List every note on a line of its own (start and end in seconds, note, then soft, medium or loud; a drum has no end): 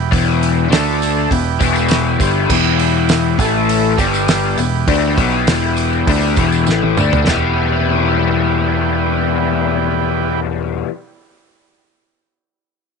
0.00 0.70 E3 medium
0.00 0.71 B3 medium
0.00 0.70 G4 medium
0.11 0.67 E1 loud
0.11 0.70 E2 loud
0.11 0.68 B2 loud
0.11 0.69 E3 loud
0.11 kick loud
0.11 open hi-hat medium
0.11 tambourine soft
0.43 open hi-hat medium
0.43 tambourine soft
0.69 1.26 D2 medium
0.69 1.28 D3 medium
0.69 1.30 D3 medium
0.69 1.29 A3 medium
0.69 1.29 D4 medium
0.69 1.30 A4 medium
0.69 open hi-hat medium
0.69 tambourine medium
0.73 1.31 A3 medium
0.73 snare loud
1.02 open hi-hat medium
1.02 tambourine medium
1.30 1.59 E1 medium
1.30 1.55 E2 medium
1.30 1.55 B2 medium
1.30 3.97 E3 medium
1.30 3.38 B3 medium
1.30 3.37 G4 medium
1.30 kick medium
1.30 open hi-hat medium
1.30 tambourine soft
1.60 2.16 E1 medium
1.60 2.19 E2 medium
1.60 2.19 B2 loud
1.60 2.19 E3 medium
1.60 kick loud
1.60 open hi-hat medium
1.60 tambourine medium
1.76 tambourine medium
1.88 snare loud
1.88 open hi-hat medium
1.88 tambourine loud
2.19 2.48 G1 medium
2.19 2.49 G2 loud
2.19 2.49 D3 loud
2.19 2.49 G3 medium
2.19 kick loud
2.19 open hi-hat medium
2.19 tambourine medium
2.50 3.35 E1 loud
2.50 3.39 E2 loud
2.50 3.38 B2 loud
2.50 3.38 E3 loud
2.50 kick loud
2.50 tambourine soft
2.50 crash medium
2.79 open hi-hat medium
2.79 tambourine soft
3.09 snare loud
3.09 open hi-hat medium
3.09 tambourine loud
3.38 3.95 A1 loud
3.38 3.98 A2 medium
3.38 3.98 E3 medium
3.38 3.99 A3 loud
3.38 4.00 A3 medium
3.38 3.99 A4 medium
3.38 kick loud
3.38 open hi-hat medium
3.38 tambourine medium
3.69 open hi-hat medium
3.69 tambourine soft
3.97 4.54 G1 medium
3.97 4.57 G2 loud
3.97 4.57 D3 medium
3.97 4.57 G3 medium
3.97 4.58 G3 loud
3.97 7.22 G4 medium
3.97 kick loud
3.97 open hi-hat medium
3.97 tambourine medium
4.14 tambourine medium
4.28 snare loud
4.28 open hi-hat medium
4.28 tambourine medium
4.55 4.86 E1 medium
4.55 4.83 E2 medium
4.55 7.23 E3 medium
4.55 7.22 B3 medium
4.55 open hi-hat medium
4.55 tambourine medium
4.59 4.83 B2 medium
4.88 5.16 D2 medium
4.88 5.17 D3 medium
4.88 5.17 A3 loud
4.88 5.18 D4 loud
4.88 kick loud
4.88 open hi-hat medium
5.02 tambourine soft
5.16 5.46 B1 medium
5.16 5.47 B2 medium
5.16 5.48 F#3 medium
5.16 5.48 B3 loud
5.16 kick loud
5.16 open hi-hat medium
5.16 tambourine soft
5.32 tambourine soft
5.47 6.04 E1 loud
5.47 6.07 E2 medium
5.47 6.07 B2 medium
5.47 6.08 E3 medium
5.47 snare loud
5.47 open hi-hat medium
5.47 tambourine medium
5.77 open hi-hat medium
5.77 tambourine medium
5.93 tambourine soft
6.07 6.35 D2 medium
6.07 6.37 D3 medium
6.07 6.38 A3 medium
6.07 6.38 D4 loud
6.07 kick loud
6.07 open hi-hat medium
6.22 tambourine soft
6.36 6.65 E1 medium
6.36 6.67 E2 medium
6.36 6.67 B2 medium
6.36 6.67 E3 loud
6.36 kick loud
6.36 open hi-hat medium
6.36 tambourine medium
6.52 tambourine medium
6.67 6.95 A1 medium
6.67 6.97 A2 medium
6.67 6.97 E3 medium
6.67 6.97 A3 loud
6.67 snare medium
6.67 tambourine medium
6.83 high tom medium
6.97 7.25 D2 medium
6.97 7.27 D3 loud
6.97 7.27 A3 medium
6.97 7.27 D4 medium
6.97 mid tom medium
6.97 tambourine medium
7.12 floor tom medium
7.12 tambourine soft
7.23 10.41 E3 medium
7.23 10.40 B3 medium
7.23 10.40 G4 medium
7.23 tambourine medium
7.27 10.83 E1 medium
7.27 10.86 E2 loud
7.27 10.86 B2 medium
7.27 10.87 E3 loud
7.27 10.88 G3 loud
7.27 10.89 B3 loud
7.27 10.90 E4 loud
7.27 snare loud
7.27 floor tom loud